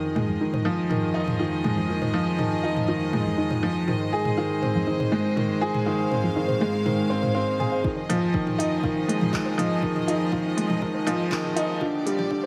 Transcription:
Already playing: F2 D#3 F3 G#4 D#5
0.16 G#3, mid tom
0.29 F3
0.41 D#3 D#4
0.54 C5, mid tom
0.65 F3 D#4
0.90 D#3, mid tom
1.14 D#4 F4
1.28 mid tom
1.39 D#3 F4
1.64 G#3, mid tom
1.78 F3
1.89 D#3 D#4
2.02 C5, mid tom
2.14 F3 D#4
2.38 D#3, mid tom
2.63 D#4 F4
2.76 mid tom
2.88 D#3 F4
3.13 G#3, mid tom
3.26 F3
3.38 D#3 D#4
3.51 C5, mid tom
3.63 F3 D#4
3.87 G#2 D#3 G#3 C5, mid tom
4.13 F4 G#4
4.25 mid tom
4.37 D#3 F4
4.62 C4, mid tom
4.75 F3
4.87 D#3 D#4
5.00 C5, mid tom
5.12 G#3 D#4
5.36 D#3, mid tom
5.61 F4 G#4
5.74 mid tom
5.86 D#3 F4 F5
6.11 C4, mid tom
6.24 F3
6.36 D#3 D#4
6.48 C5, mid tom
6.61 G#3 D#4
6.86 D#3, mid tom
7.10 C4 C5
7.22 C5, mid tom
7.35 C4 F5
7.60 G#4, mid tom
7.72 F5
7.84 F2 D#3 F3 D#4 G#4 D#5, kick
7.97 C5
8.09 F3 D#4, closed hi-hat, mid tom
8.34 D#3, kick
8.47 mid tom
8.59 D#4 F4, closed hi-hat
8.83 D#3 F4, kick, mid tom
9.08 G#3, closed hi-hat
9.21 F3, mid tom
9.33 D#3 D#4, kick, clap
9.46 C5
9.58 F3 D#4, closed hi-hat, mid tom
9.83 D#3, kick
9.96 mid tom
10.08 D#4 F4, closed hi-hat
10.32 D#3 F4, kick, mid tom
10.57 G#3, closed hi-hat
10.70 F3, mid tom
10.82 D#3 D#4, kick
10.94 C5
11.07 F3 D#4, closed hi-hat, mid tom
11.31 D#3, kick, clap
11.44 mid tom
11.56 D#4 F4, closed hi-hat
11.81 A#2 D3 F4 G4 D5, kick, mid tom
12.06 G3, closed hi-hat
12.19 F3, mid tom
12.31 D3 D4, kick

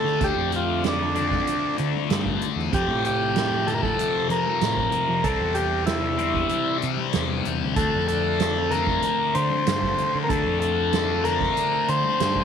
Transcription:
Already playing: D3 A3 C4 D4 F4 A4
0.04 D3, snare
0.21 D2 D3 A3 D4 G4, kick, closed hi-hat
0.37 F2
0.52 F4, closed hi-hat
0.84 snare, closed hi-hat
0.88 D4
1.15 D3 A3 D4, closed hi-hat, low conga
1.31 kick, high conga
1.47 closed hi-hat, low conga
1.78 D3, closed hi-hat
1.95 high conga
2.10 G2, snare, closed hi-hat
2.26 kick
2.41 closed hi-hat, low conga
2.56 E2, snare
2.73 F2 C3 F3 G4, kick, closed hi-hat
2.88 A2
3.05 G4, closed hi-hat
3.36 snare, closed hi-hat
3.67 F2 C3 F3 A4, closed hi-hat, low conga
3.74 A#4
3.83 A4, kick, high conga
3.99 closed hi-hat, low conga
4.30 F3 A#4, closed hi-hat
4.46 high conga
4.61 A2, snare, closed hi-hat
4.77 kick
4.92 closed hi-hat, low conga
5.08 F3
5.23 C2 C3 E3 G3 C4 D4 A4, kick, closed hi-hat
5.40 E2
5.54 G4, closed hi-hat
5.86 E4, snare, closed hi-hat
6.17 C3 G3 C4, closed hi-hat, low conga
6.34 kick, high conga
6.49 closed hi-hat, high conga, low conga
6.82 C3, closed hi-hat
6.97 high conga
7.13 E2, snare, closed hi-hat
7.28 high conga
7.43 E2, closed hi-hat, low conga
7.62 D2
7.75 D2 D3 F3 A3 C4 D4 A4, kick, closed hi-hat
7.95 F2
8.08 A4, closed hi-hat
8.40 snare, closed hi-hat
8.71 D3 A3 D4 A#4, closed hi-hat, low conga
8.87 kick, high conga
9.02 closed hi-hat, low conga
9.34 D3 C5, closed hi-hat
9.50 high conga
9.67 G2, snare, closed hi-hat
9.82 kick
9.97 closed hi-hat, low conga
10.15 D3
10.23 A#4
10.28 D2 D3 A3 D4 A4, kick, closed hi-hat
10.46 F2
10.60 A4, closed hi-hat
10.93 snare, closed hi-hat
11.24 D3 A3 D4 A#4, closed hi-hat, low conga
11.41 kick, high conga
11.57 closed hi-hat, low conga
11.88 D3 C5, closed hi-hat
12.04 high conga
12.20 G2, snare, closed hi-hat
12.36 kick

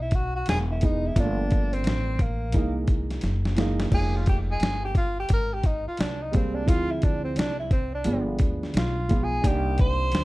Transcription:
Already playing: B1
0.01 E4
0.11 kick, closed hi-hat
0.15 F#4
0.36 F#4
0.46 E1 G#4, snare, closed hi-hat
0.71 E4
0.81 E3 G#3 B3 D#4, kick, closed hi-hat
0.85 D#4
1.07 E4
1.16 G1 F3 A3 A#3 D4, kick, closed hi-hat
1.20 D4
1.51 kick, closed hi-hat
1.73 C4, closed hi-hat
1.84 A1, snare, closed hi-hat
2.19 A#3, kick, closed hi-hat
2.52 C2 E3 G#3 A#3 D#4, kick, closed hi-hat
2.88 kick, closed hi-hat
3.11 snare, closed hi-hat
3.21 F#1, snare, closed hi-hat
3.45 snare
3.56 E3 G#3 A#3 D#4, snare, closed hi-hat
3.80 snare
3.91 F1 F3 G#3 A#3 D#4 G#4, kick, crash
4.16 F4
4.26 G4, kick, closed hi-hat
4.51 G#4
4.60 G1, snare, closed hi-hat
4.84 G4
4.95 F4, kick, closed hi-hat
5.20 G4
5.29 G#1, kick, closed hi-hat
5.33 A#4
5.54 G4
5.63 D#4, kick, closed hi-hat
5.86 F4, muted upright bass stroke
5.97 C2 D4, snare, closed hi-hat
6.22 D#4
6.32 G3 G#3 A#3 C4, kick, closed hi-hat
6.36 C4
6.55 D4
6.66 D2 F3 G#3 C4 E4 F4, kick, closed hi-hat
6.91 E4
7.02 D4, kick, closed hi-hat
7.24 C4
7.36 C2 D4, snare, closed hi-hat
7.59 E4
7.71 C4, kick, closed hi-hat
7.95 D4
8.04 G1 F3 G#3 B3 D4, closed hi-hat
8.39 D2, kick, closed hi-hat
8.63 snare
8.74 B1 F4, snare, closed hi-hat
9.09 F3 G#3 B3 F4, kick, closed hi-hat
9.24 G#4
9.42 C2 G3 A#3 D4 D#4, kick, closed hi-hat
9.46 G4
9.78 C5, kick, closed hi-hat
10.12 D2, snare, closed hi-hat

